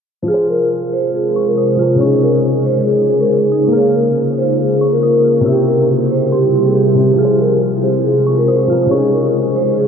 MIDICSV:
0, 0, Header, 1, 5, 480
1, 0, Start_track
1, 0, Key_signature, -4, "minor"
1, 0, Tempo, 431655
1, 311, Time_signature, 4, 2, 24, 8
1, 10982, End_track
2, 0, Start_track
2, 0, Title_t, "Synth bell"
2, 0, Program_c, 0, 98
2, 311, Note_on_c, 0, 89, 98
2, 1467, Note_off_c, 0, 89, 0
2, 1511, Note_on_c, 0, 85, 79
2, 1739, Note_off_c, 0, 85, 0
2, 1751, Note_on_c, 0, 87, 83
2, 1979, Note_off_c, 0, 87, 0
2, 1990, Note_on_c, 0, 89, 80
2, 2219, Note_off_c, 0, 89, 0
2, 2231, Note_on_c, 0, 85, 94
2, 2682, Note_off_c, 0, 85, 0
2, 3912, Note_on_c, 0, 87, 85
2, 4140, Note_off_c, 0, 87, 0
2, 4151, Note_on_c, 0, 89, 102
2, 5306, Note_off_c, 0, 89, 0
2, 5350, Note_on_c, 0, 85, 73
2, 5578, Note_off_c, 0, 85, 0
2, 5591, Note_on_c, 0, 87, 77
2, 5819, Note_off_c, 0, 87, 0
2, 5830, Note_on_c, 0, 89, 72
2, 6058, Note_off_c, 0, 89, 0
2, 6070, Note_on_c, 0, 88, 96
2, 6522, Note_off_c, 0, 88, 0
2, 7030, Note_on_c, 0, 84, 80
2, 7946, Note_off_c, 0, 84, 0
2, 7991, Note_on_c, 0, 89, 97
2, 9146, Note_off_c, 0, 89, 0
2, 9191, Note_on_c, 0, 85, 78
2, 9419, Note_off_c, 0, 85, 0
2, 9431, Note_on_c, 0, 87, 81
2, 9659, Note_off_c, 0, 87, 0
2, 9671, Note_on_c, 0, 89, 78
2, 9899, Note_off_c, 0, 89, 0
2, 9911, Note_on_c, 0, 85, 100
2, 10362, Note_off_c, 0, 85, 0
2, 10982, End_track
3, 0, Start_track
3, 0, Title_t, "Vibraphone"
3, 0, Program_c, 1, 11
3, 311, Note_on_c, 1, 68, 103
3, 495, Note_off_c, 1, 68, 0
3, 552, Note_on_c, 1, 70, 81
3, 735, Note_off_c, 1, 70, 0
3, 1032, Note_on_c, 1, 72, 74
3, 1215, Note_off_c, 1, 72, 0
3, 1272, Note_on_c, 1, 68, 77
3, 1617, Note_off_c, 1, 68, 0
3, 1640, Note_on_c, 1, 70, 85
3, 1725, Note_off_c, 1, 70, 0
3, 1751, Note_on_c, 1, 72, 80
3, 2202, Note_off_c, 1, 72, 0
3, 2230, Note_on_c, 1, 68, 98
3, 2414, Note_off_c, 1, 68, 0
3, 2471, Note_on_c, 1, 70, 75
3, 2655, Note_off_c, 1, 70, 0
3, 2950, Note_on_c, 1, 72, 85
3, 3134, Note_off_c, 1, 72, 0
3, 3192, Note_on_c, 1, 68, 83
3, 3537, Note_off_c, 1, 68, 0
3, 3558, Note_on_c, 1, 70, 89
3, 3645, Note_off_c, 1, 70, 0
3, 3672, Note_on_c, 1, 68, 79
3, 4123, Note_off_c, 1, 68, 0
3, 4152, Note_on_c, 1, 68, 95
3, 4335, Note_off_c, 1, 68, 0
3, 4390, Note_on_c, 1, 70, 81
3, 4574, Note_off_c, 1, 70, 0
3, 4871, Note_on_c, 1, 72, 83
3, 5055, Note_off_c, 1, 72, 0
3, 5111, Note_on_c, 1, 68, 72
3, 5456, Note_off_c, 1, 68, 0
3, 5478, Note_on_c, 1, 70, 80
3, 5564, Note_off_c, 1, 70, 0
3, 5591, Note_on_c, 1, 70, 85
3, 6042, Note_off_c, 1, 70, 0
3, 6071, Note_on_c, 1, 67, 100
3, 6255, Note_off_c, 1, 67, 0
3, 6309, Note_on_c, 1, 70, 82
3, 6494, Note_off_c, 1, 70, 0
3, 6791, Note_on_c, 1, 72, 81
3, 6975, Note_off_c, 1, 72, 0
3, 7031, Note_on_c, 1, 67, 91
3, 7376, Note_off_c, 1, 67, 0
3, 7397, Note_on_c, 1, 68, 83
3, 7484, Note_off_c, 1, 68, 0
3, 7510, Note_on_c, 1, 67, 76
3, 7962, Note_off_c, 1, 67, 0
3, 7990, Note_on_c, 1, 68, 102
3, 8175, Note_off_c, 1, 68, 0
3, 8233, Note_on_c, 1, 70, 84
3, 8416, Note_off_c, 1, 70, 0
3, 8711, Note_on_c, 1, 72, 75
3, 8895, Note_off_c, 1, 72, 0
3, 8952, Note_on_c, 1, 68, 75
3, 9297, Note_off_c, 1, 68, 0
3, 9319, Note_on_c, 1, 70, 80
3, 9405, Note_off_c, 1, 70, 0
3, 9429, Note_on_c, 1, 72, 81
3, 9881, Note_off_c, 1, 72, 0
3, 9910, Note_on_c, 1, 68, 98
3, 10094, Note_off_c, 1, 68, 0
3, 10151, Note_on_c, 1, 70, 76
3, 10335, Note_off_c, 1, 70, 0
3, 10630, Note_on_c, 1, 72, 83
3, 10814, Note_off_c, 1, 72, 0
3, 10872, Note_on_c, 1, 68, 79
3, 10982, Note_off_c, 1, 68, 0
3, 10982, End_track
4, 0, Start_track
4, 0, Title_t, "Grand piano"
4, 0, Program_c, 2, 0
4, 249, Note_on_c, 2, 53, 67
4, 291, Note_on_c, 2, 65, 58
4, 333, Note_on_c, 2, 68, 61
4, 375, Note_on_c, 2, 72, 72
4, 525, Control_c, 2, 64, 127
4, 1926, Note_off_c, 2, 53, 0
4, 1947, Note_off_c, 2, 65, 0
4, 1958, Note_on_c, 2, 53, 49
4, 1969, Note_off_c, 2, 68, 0
4, 1979, Note_on_c, 2, 65, 45
4, 1990, Note_off_c, 2, 72, 0
4, 2000, Note_on_c, 2, 68, 44
4, 2021, Note_on_c, 2, 70, 54
4, 2169, Note_on_c, 2, 49, 65
4, 2211, Note_on_c, 2, 61, 64
4, 2214, Note_off_c, 2, 53, 0
4, 2225, Note_off_c, 2, 65, 0
4, 2235, Note_off_c, 2, 68, 0
4, 2245, Control_c, 2, 64, 0
4, 2246, Note_off_c, 2, 70, 0
4, 2253, Note_on_c, 2, 63, 59
4, 2295, Note_on_c, 2, 68, 77
4, 2416, Control_c, 2, 64, 127
4, 4081, Note_off_c, 2, 49, 0
4, 4087, Note_on_c, 2, 58, 70
4, 4102, Note_off_c, 2, 61, 0
4, 4124, Note_off_c, 2, 63, 0
4, 4129, Note_on_c, 2, 70, 62
4, 4145, Note_off_c, 2, 68, 0
4, 4164, Control_c, 2, 64, 0
4, 4171, Note_on_c, 2, 73, 64
4, 4213, Note_on_c, 2, 77, 76
4, 4384, Control_c, 2, 64, 127
4, 6000, Note_off_c, 2, 58, 0
4, 6009, Note_on_c, 2, 48, 67
4, 6021, Note_off_c, 2, 70, 0
4, 6043, Note_off_c, 2, 73, 0
4, 6051, Note_on_c, 2, 60, 64
4, 6064, Note_off_c, 2, 77, 0
4, 6085, Control_c, 2, 64, 0
4, 6093, Note_on_c, 2, 64, 60
4, 6135, Note_on_c, 2, 67, 76
4, 6297, Control_c, 2, 64, 127
4, 7686, Note_off_c, 2, 48, 0
4, 7707, Note_off_c, 2, 60, 0
4, 7717, Note_on_c, 2, 48, 49
4, 7729, Note_off_c, 2, 64, 0
4, 7738, Note_on_c, 2, 60, 42
4, 7750, Note_off_c, 2, 67, 0
4, 7760, Note_on_c, 2, 64, 41
4, 7781, Note_on_c, 2, 67, 53
4, 7929, Note_on_c, 2, 53, 68
4, 7971, Note_on_c, 2, 65, 59
4, 7974, Note_off_c, 2, 48, 0
4, 7985, Note_off_c, 2, 60, 0
4, 7995, Note_off_c, 2, 64, 0
4, 8006, Note_off_c, 2, 67, 0
4, 8008, Control_c, 2, 64, 0
4, 8013, Note_on_c, 2, 68, 62
4, 8055, Note_on_c, 2, 72, 74
4, 8187, Control_c, 2, 64, 127
4, 9606, Note_off_c, 2, 53, 0
4, 9627, Note_off_c, 2, 65, 0
4, 9638, Note_on_c, 2, 53, 50
4, 9649, Note_off_c, 2, 68, 0
4, 9658, Note_on_c, 2, 65, 46
4, 9670, Note_off_c, 2, 72, 0
4, 9680, Note_on_c, 2, 68, 43
4, 9701, Note_on_c, 2, 70, 54
4, 9849, Note_on_c, 2, 49, 66
4, 9891, Note_on_c, 2, 61, 60
4, 9894, Note_off_c, 2, 53, 0
4, 9905, Note_off_c, 2, 65, 0
4, 9915, Note_off_c, 2, 68, 0
4, 9926, Note_off_c, 2, 70, 0
4, 9928, Control_c, 2, 64, 0
4, 9933, Note_on_c, 2, 63, 60
4, 9975, Note_on_c, 2, 68, 76
4, 10091, Control_c, 2, 64, 127
4, 10982, Note_off_c, 2, 49, 0
4, 10982, Note_off_c, 2, 61, 0
4, 10982, Note_off_c, 2, 63, 0
4, 10982, Note_off_c, 2, 68, 0
4, 10982, End_track
5, 0, Start_track
5, 0, Title_t, "Ambient pad"
5, 0, Program_c, 3, 92
5, 312, Note_on_c, 3, 48, 76
5, 312, Note_on_c, 3, 56, 75
5, 312, Note_on_c, 3, 65, 70
5, 312, Note_on_c, 3, 68, 86
5, 2212, Note_off_c, 3, 48, 0
5, 2212, Note_off_c, 3, 65, 0
5, 2212, Note_off_c, 3, 68, 0
5, 2231, Note_on_c, 3, 49, 78
5, 2231, Note_on_c, 3, 63, 73
5, 2231, Note_on_c, 3, 68, 87
5, 4113, Note_off_c, 3, 56, 0
5, 4132, Note_off_c, 3, 63, 0
5, 4132, Note_off_c, 3, 68, 0
5, 4151, Note_on_c, 3, 58, 70
5, 4151, Note_on_c, 3, 65, 73
5, 4151, Note_on_c, 3, 70, 88
5, 6032, Note_off_c, 3, 49, 0
5, 6052, Note_off_c, 3, 58, 0
5, 6052, Note_off_c, 3, 65, 0
5, 6052, Note_off_c, 3, 70, 0
5, 6071, Note_on_c, 3, 48, 80
5, 6071, Note_on_c, 3, 55, 73
5, 6071, Note_on_c, 3, 64, 73
5, 6071, Note_on_c, 3, 67, 89
5, 7972, Note_off_c, 3, 48, 0
5, 7972, Note_off_c, 3, 55, 0
5, 7972, Note_off_c, 3, 64, 0
5, 7972, Note_off_c, 3, 67, 0
5, 7991, Note_on_c, 3, 48, 79
5, 7991, Note_on_c, 3, 56, 73
5, 7991, Note_on_c, 3, 65, 73
5, 7991, Note_on_c, 3, 68, 88
5, 9892, Note_off_c, 3, 48, 0
5, 9892, Note_off_c, 3, 65, 0
5, 9910, Note_on_c, 3, 49, 80
5, 9911, Note_on_c, 3, 63, 72
5, 10982, Note_off_c, 3, 49, 0
5, 10982, Note_off_c, 3, 56, 0
5, 10982, Note_off_c, 3, 63, 0
5, 10982, Note_off_c, 3, 68, 0
5, 10982, End_track
0, 0, End_of_file